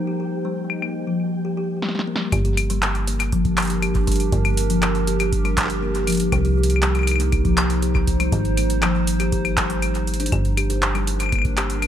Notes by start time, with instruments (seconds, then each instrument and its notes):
Already playing: ambient pad D#4 G4 C5, synth texture G4 G5
0.07 kalimba G4
0.20 kalimba G4
0.45 kalimba G3
0.70 claves
0.82 kalimba A#3, claves
1.07 kalimba F3
1.45 kalimba G4
1.57 kalimba G4
1.82 kalimba G3, snare
1.89 snare
1.95 kalimba G3, snare
1.99 snare
2.01 snare
2.07 kalimba A#3
2.16 snare
2.20 kalimba G3
2.32 fm bass G1, ambient pad D4, kalimba G4, kick, closed hi-hat, claves
2.45 kalimba G4, closed hi-hat
2.57 closed hi-hat, claves
2.70 kalimba G3, closed hi-hat
2.82 clap, closed hi-hat
2.94 ambient pad G4, closed hi-hat
3.07 kalimba A#3, ambient pad A#4, closed hi-hat
3.20 closed hi-hat, claves
3.32 kalimba F3, kick, closed hi-hat
3.45 kick, closed hi-hat
3.57 clap, closed hi-hat, claves
3.60 closed hi-hat
3.62 closed hi-hat
3.65 closed hi-hat
3.67 kalimba G4, closed hi-hat
3.70 closed hi-hat
3.82 kalimba G4, closed hi-hat, claves
3.95 kick, closed hi-hat
4.07 kalimba G3, kick, closed hi-hat
4.12 closed hi-hat
4.16 closed hi-hat
4.20 closed hi-hat
4.32 fm bass G1, kick, closed hi-hat
4.45 kalimba A#3, closed hi-hat, claves
4.57 closed hi-hat
4.70 kalimba F3, closed hi-hat
4.82 clap, closed hi-hat, claves
4.95 closed hi-hat
5.07 kalimba G4, closed hi-hat
5.20 kalimba G4, closed hi-hat, claves
5.32 kick, closed hi-hat
5.45 kalimba G3, closed hi-hat, claves
5.57 kick, clap, closed hi-hat
5.60 clap
5.62 clap
5.65 clap
5.67 clap, closed hi-hat
5.82 kalimba A#3
5.95 closed hi-hat
6.07 kalimba F3, closed hi-hat, claves
6.10 closed hi-hat
6.12 closed hi-hat
6.15 closed hi-hat
6.17 closed hi-hat
6.20 closed hi-hat
6.32 fm bass C2, ambient pad D#4, kick, closed hi-hat, claves
6.45 kalimba G4, closed hi-hat
6.57 kalimba G4
6.63 closed hi-hat
6.70 closed hi-hat
6.76 claves
6.82 kalimba G3, clap, closed hi-hat
6.95 closed hi-hat, claves
6.99 claves
7.03 claves
7.07 closed hi-hat, claves
7.11 claves
7.16 claves
7.20 kalimba A#3, ambient pad C5, closed hi-hat
7.32 kick, closed hi-hat, claves
7.45 kalimba F3, kick, closed hi-hat
7.57 clap, closed hi-hat, claves
7.70 closed hi-hat
7.82 kalimba G4, closed hi-hat
7.95 kalimba G4, kick, claves
8.07 kick, closed hi-hat
8.20 kalimba G3, closed hi-hat, claves
8.32 fm bass G#1, kick, closed hi-hat
8.45 closed hi-hat
8.57 kalimba A#3, closed hi-hat, claves
8.70 closed hi-hat
8.82 kalimba F3, clap, closed hi-hat, claves
9.07 closed hi-hat
9.20 kalimba G4, closed hi-hat, claves
9.32 kalimba G4, kick, closed hi-hat
9.45 closed hi-hat, claves
9.57 kalimba G3, kick, clap, closed hi-hat
9.70 kalimba G3, closed hi-hat
9.82 closed hi-hat, claves
9.95 closed hi-hat
10.07 closed hi-hat
10.14 closed hi-hat
10.20 kalimba D4, closed hi-hat
10.26 closed hi-hat
10.32 fm bass G1, ambient pad D4, kick, closed hi-hat, claves
10.45 closed hi-hat
10.57 kalimba G4, closed hi-hat, claves
10.70 kalimba G4, closed hi-hat
10.82 clap, closed hi-hat
10.93 kalimba G3, ambient pad A#4, closed hi-hat, claves
11.03 ambient pad G4
11.07 closed hi-hat
11.20 closed hi-hat, claves
11.23 claves
11.26 claves
11.29 kalimba A#3, kick, closed hi-hat, claves
11.32 claves
11.36 claves
11.39 claves
11.42 kick, closed hi-hat, claves
11.57 kalimba G4, clap, closed hi-hat, claves
11.70 closed hi-hat
11.82 closed hi-hat, claves